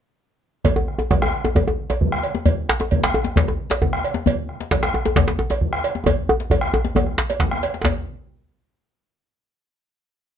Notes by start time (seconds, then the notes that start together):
0.65 bombo low, cowbell, djembe tone, djembe bass
0.76 djembe tone
0.88 bombo rim
0.99 djembe slap, djembe tone
1.11 bombo low, cowbell, djembe tone
1.22 bombo rim, djembe tone
1.34 bombo rim
1.44 bombo rim, djembe slap, djembe tone
1.55 bombo low, cowbell, djembe slap, djembe tone, djembe bass
1.68 djembe tone
1.90 cowbell, djembe slap, djembe tone
2.01 bombo low, djembe slap
2.12 bombo rim
2.23 cowbell
2.35 djembe slap, djembe tone
2.46 bombo low, cowbell, djembe bass
2.69 bombo rim, djembe slap
2.80 djembe slap, djembe tone
2.91 bombo low, cowbell, djembe slap
3.04 bombo rim, djembe slap
3.14 bombo rim, djembe tone
3.24 bombo rim, djembe slap, djembe tone
3.36 bombo low, cowbell, djembe slap, djembe bass
3.48 djembe tone
3.70 cowbell, djembe slap
3.81 bombo low, djembe slap, djembe tone
3.93 bombo rim
4.04 bombo rim, cowbell
4.14 djembe slap, djembe tone
4.26 bombo low, cowbell, djembe bass
4.49 bombo rim
4.61 djembe slap
4.71 bombo low, cowbell, djembe slap
4.83 bombo rim, djembe slap
4.94 bombo rim, djembe tone
5.05 bombo rim, djembe slap, djembe tone
5.16 bombo low, cowbell, djembe slap, djembe bass
5.28 djembe slap
5.39 djembe tone
5.50 cowbell, djembe slap, djembe tone
5.61 bombo low, djembe slap
5.73 bombo rim
5.84 bombo rim, cowbell
5.95 djembe slap, djembe tone
6.06 bombo low, cowbell, djembe tone, djembe bass
6.29 djembe tone
6.40 djembe slap
6.50 bombo low, cowbell, djembe tone
6.61 bombo rim, djembe slap
6.73 bombo rim, djembe slap, djembe tone
6.85 djembe slap, djembe tone
6.95 bombo low, cowbell, djembe tone, djembe bass
7.07 bombo rim, djembe slap
7.18 djembe slap
7.30 cowbell, djembe slap
7.40 bombo rim, bombo low, djembe slap
7.51 bombo rim, djembe bass
7.63 cowbell, djembe slap
7.74 bombo rim, djembe slap
7.84 bombo low, cowbell, djembe slap, djembe bass